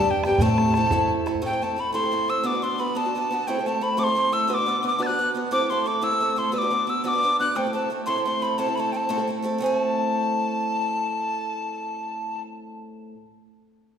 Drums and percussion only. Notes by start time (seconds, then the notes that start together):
0.24 bodhran
0.31 bodhran
0.38 bodhran
0.58 bodhran
0.74 bodhran
0.91 bodhran
1.27 bodhran
1.35 bodhran